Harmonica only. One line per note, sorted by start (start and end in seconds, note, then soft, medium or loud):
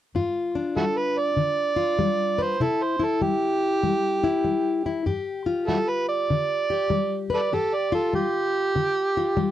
0.77 0.83 E4 medium
0.77 0.85 F#4 medium
0.77 0.99 A4 medium
0.98 1.20 B4 medium
1.19 2.44 D5 loud
2.42 2.64 C5 medium
2.62 2.84 A4 medium
2.83 3.05 C5 medium
3.04 3.24 A4 medium
3.22 5.02 G4 medium
5.68 5.77 E4 medium
5.68 5.77 F#4 medium
5.68 5.91 A4 medium
5.89 6.08 B4 medium
6.09 7.28 D5 loud
7.34 7.40 A4 medium
7.34 7.40 B4 medium
7.34 7.55 D5 medium
7.54 7.76 A4 medium
7.74 7.93 D5 medium
7.95 8.13 A4 medium
8.15 9.51 G4 loud